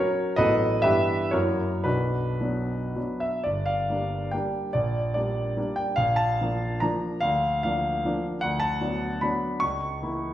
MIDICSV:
0, 0, Header, 1, 2, 480
1, 0, Start_track
1, 0, Key_signature, 2, "minor"
1, 0, Tempo, 433839
1, 428, Time_signature, 3, 2, 24, 8
1, 920, Tempo, 516351
1, 1880, Tempo, 549954
1, 2840, Tempo, 490998
1, 3320, Key_signature, -2, "minor"
1, 3320, Tempo, 440852
1, 3800, Tempo, 418702
1, 7160, Tempo, 405405
1, 8600, Tempo, 384123
1, 9560, Tempo, 408998
1, 11349, End_track
2, 0, Start_track
2, 0, Title_t, "Grand piano"
2, 0, Program_c, 0, 0
2, 0, Note_on_c, 0, 54, 39
2, 0, Note_on_c, 0, 61, 40
2, 0, Note_on_c, 0, 66, 61
2, 0, Note_on_c, 0, 70, 65
2, 0, Note_on_c, 0, 73, 81
2, 383, Note_off_c, 0, 54, 0
2, 383, Note_off_c, 0, 61, 0
2, 388, Note_off_c, 0, 66, 0
2, 389, Note_off_c, 0, 70, 0
2, 403, Note_on_c, 0, 75, 97
2, 414, Note_off_c, 0, 73, 0
2, 415, Note_on_c, 0, 71, 76
2, 416, Note_on_c, 0, 69, 74
2, 423, Note_on_c, 0, 54, 46
2, 426, Note_on_c, 0, 33, 60
2, 432, Note_on_c, 0, 59, 44
2, 432, Note_on_c, 0, 66, 43
2, 644, Control_c, 0, 64, 127
2, 873, Note_off_c, 0, 54, 0
2, 877, Note_off_c, 0, 59, 0
2, 877, Note_off_c, 0, 66, 0
2, 878, Note_off_c, 0, 69, 0
2, 878, Note_off_c, 0, 71, 0
2, 903, Note_off_c, 0, 33, 0
2, 906, Note_off_c, 0, 75, 0
2, 906, Note_on_c, 0, 76, 92
2, 918, Note_on_c, 0, 67, 69
2, 920, Note_on_c, 0, 71, 68
2, 922, Note_on_c, 0, 52, 44
2, 924, Note_on_c, 0, 43, 58
2, 929, Control_c, 0, 64, 0
2, 929, Note_on_c, 0, 59, 42
2, 1110, Control_c, 0, 64, 127
2, 1353, Note_off_c, 0, 52, 0
2, 1355, Note_off_c, 0, 67, 0
2, 1356, Note_off_c, 0, 59, 0
2, 1356, Note_off_c, 0, 71, 0
2, 1366, Note_on_c, 0, 73, 80
2, 1377, Note_off_c, 0, 43, 0
2, 1380, Note_on_c, 0, 70, 66
2, 1383, Note_off_c, 0, 76, 0
2, 1383, Note_on_c, 0, 66, 60
2, 1385, Note_on_c, 0, 42, 56
2, 1386, Note_on_c, 0, 54, 42
2, 1390, Note_on_c, 0, 58, 40
2, 1394, Note_on_c, 0, 64, 41
2, 1397, Control_c, 0, 64, 0
2, 1601, Control_c, 0, 64, 127
2, 1841, Note_off_c, 0, 54, 0
2, 1841, Note_off_c, 0, 70, 0
2, 1842, Note_off_c, 0, 66, 0
2, 1843, Note_off_c, 0, 58, 0
2, 1845, Note_off_c, 0, 64, 0
2, 1854, Note_on_c, 0, 71, 70
2, 1862, Note_on_c, 0, 66, 55
2, 1863, Note_off_c, 0, 42, 0
2, 1865, Note_on_c, 0, 62, 54
2, 1868, Note_off_c, 0, 73, 0
2, 1870, Note_on_c, 0, 35, 52
2, 1894, Control_c, 0, 64, 0
2, 2092, Control_c, 0, 64, 127
2, 2341, Note_off_c, 0, 35, 0
2, 2351, Note_off_c, 0, 62, 0
2, 2356, Note_on_c, 0, 54, 39
2, 2358, Note_on_c, 0, 59, 40
2, 2364, Note_on_c, 0, 62, 45
2, 2803, Note_off_c, 0, 54, 0
2, 2805, Note_off_c, 0, 59, 0
2, 2808, Note_off_c, 0, 62, 0
2, 2836, Note_on_c, 0, 54, 33
2, 2838, Note_on_c, 0, 62, 35
2, 2839, Note_on_c, 0, 59, 33
2, 2857, Control_c, 0, 64, 0
2, 3046, Note_off_c, 0, 66, 0
2, 3073, Note_on_c, 0, 76, 64
2, 3081, Note_off_c, 0, 71, 0
2, 3278, Note_off_c, 0, 54, 0
2, 3280, Note_off_c, 0, 59, 0
2, 3280, Note_off_c, 0, 62, 0
2, 3301, Note_on_c, 0, 74, 74
2, 3310, Note_off_c, 0, 76, 0
2, 3322, Note_on_c, 0, 31, 50
2, 3518, Control_c, 0, 64, 127
2, 3538, Note_on_c, 0, 77, 76
2, 3543, Note_off_c, 0, 74, 0
2, 3787, Note_off_c, 0, 31, 0
2, 3803, Note_on_c, 0, 55, 36
2, 3811, Note_on_c, 0, 58, 38
2, 3820, Note_on_c, 0, 62, 42
2, 4252, Note_off_c, 0, 55, 0
2, 4256, Note_off_c, 0, 58, 0
2, 4260, Note_off_c, 0, 62, 0
2, 4280, Note_on_c, 0, 79, 65
2, 4289, Note_off_c, 0, 77, 0
2, 4301, Note_on_c, 0, 55, 43
2, 4303, Note_on_c, 0, 58, 44
2, 4307, Note_on_c, 0, 62, 44
2, 4312, Control_c, 0, 64, 0
2, 4717, Note_off_c, 0, 55, 0
2, 4719, Note_off_c, 0, 58, 0
2, 4721, Note_off_c, 0, 62, 0
2, 4753, Note_off_c, 0, 79, 0
2, 4756, Note_on_c, 0, 74, 80
2, 4777, Note_on_c, 0, 34, 54
2, 4980, Control_c, 0, 64, 127
2, 5211, Note_off_c, 0, 74, 0
2, 5228, Note_on_c, 0, 74, 72
2, 5244, Note_off_c, 0, 34, 0
2, 5247, Note_on_c, 0, 55, 38
2, 5250, Note_on_c, 0, 58, 36
2, 5252, Note_on_c, 0, 62, 41
2, 5681, Note_off_c, 0, 55, 0
2, 5683, Note_off_c, 0, 58, 0
2, 5684, Note_off_c, 0, 62, 0
2, 5720, Note_on_c, 0, 55, 46
2, 5724, Note_on_c, 0, 58, 42
2, 5731, Note_on_c, 0, 62, 47
2, 5738, Control_c, 0, 64, 0
2, 5935, Note_on_c, 0, 79, 76
2, 5947, Note_off_c, 0, 74, 0
2, 6138, Note_off_c, 0, 55, 0
2, 6141, Note_off_c, 0, 58, 0
2, 6144, Note_off_c, 0, 62, 0
2, 6164, Note_on_c, 0, 77, 95
2, 6177, Note_off_c, 0, 79, 0
2, 6184, Note_on_c, 0, 34, 59
2, 6362, Control_c, 0, 64, 127
2, 6398, Note_on_c, 0, 81, 84
2, 6414, Note_off_c, 0, 77, 0
2, 6660, Note_off_c, 0, 34, 0
2, 6686, Note_on_c, 0, 53, 40
2, 6695, Note_on_c, 0, 58, 42
2, 6695, Note_on_c, 0, 62, 43
2, 7118, Note_off_c, 0, 53, 0
2, 7123, Note_off_c, 0, 58, 0
2, 7123, Note_off_c, 0, 62, 0
2, 7133, Note_on_c, 0, 82, 76
2, 7145, Note_off_c, 0, 81, 0
2, 7156, Note_on_c, 0, 53, 46
2, 7158, Note_on_c, 0, 58, 46
2, 7160, Note_on_c, 0, 62, 50
2, 7172, Control_c, 0, 64, 0
2, 7577, Note_off_c, 0, 53, 0
2, 7579, Note_off_c, 0, 58, 0
2, 7580, Note_off_c, 0, 62, 0
2, 7607, Note_on_c, 0, 77, 90
2, 7612, Note_off_c, 0, 82, 0
2, 7630, Note_on_c, 0, 38, 57
2, 7824, Control_c, 0, 64, 127
2, 8096, Note_off_c, 0, 77, 0
2, 8104, Note_off_c, 0, 38, 0
2, 8113, Note_on_c, 0, 77, 78
2, 8133, Note_on_c, 0, 53, 39
2, 8137, Note_on_c, 0, 58, 42
2, 8144, Note_on_c, 0, 62, 46
2, 8561, Note_off_c, 0, 53, 0
2, 8563, Note_off_c, 0, 58, 0
2, 8566, Note_off_c, 0, 62, 0
2, 8608, Note_on_c, 0, 53, 46
2, 8609, Control_c, 0, 64, 0
2, 8613, Note_on_c, 0, 58, 49
2, 8617, Note_on_c, 0, 62, 53
2, 8833, Note_off_c, 0, 77, 0
2, 9023, Note_off_c, 0, 53, 0
2, 9025, Note_off_c, 0, 58, 0
2, 9028, Note_off_c, 0, 62, 0
2, 9059, Note_on_c, 0, 78, 95
2, 9076, Note_on_c, 0, 38, 55
2, 9240, Control_c, 0, 64, 127
2, 9290, Note_on_c, 0, 81, 84
2, 9300, Note_off_c, 0, 78, 0
2, 9550, Note_off_c, 0, 38, 0
2, 9561, Note_on_c, 0, 54, 42
2, 9565, Note_on_c, 0, 62, 42
2, 9567, Note_on_c, 0, 59, 40
2, 10000, Note_off_c, 0, 54, 0
2, 10002, Note_off_c, 0, 62, 0
2, 10003, Note_off_c, 0, 59, 0
2, 10030, Note_on_c, 0, 83, 68
2, 10040, Note_off_c, 0, 81, 0
2, 10048, Note_on_c, 0, 54, 42
2, 10053, Note_on_c, 0, 59, 44
2, 10058, Note_on_c, 0, 62, 51
2, 10059, Control_c, 0, 64, 0
2, 10464, Note_off_c, 0, 54, 0
2, 10467, Note_off_c, 0, 59, 0
2, 10469, Note_off_c, 0, 62, 0
2, 10484, Note_on_c, 0, 85, 90
2, 10501, Note_off_c, 0, 83, 0
2, 10508, Note_on_c, 0, 37, 50
2, 10677, Control_c, 0, 64, 127
2, 10971, Note_off_c, 0, 37, 0
2, 10982, Note_on_c, 0, 52, 36
2, 10989, Note_on_c, 0, 58, 36
2, 10989, Note_on_c, 0, 64, 39
2, 11349, Note_off_c, 0, 52, 0
2, 11349, Note_off_c, 0, 58, 0
2, 11349, Note_off_c, 0, 64, 0
2, 11349, Note_off_c, 0, 85, 0
2, 11349, End_track
0, 0, End_of_file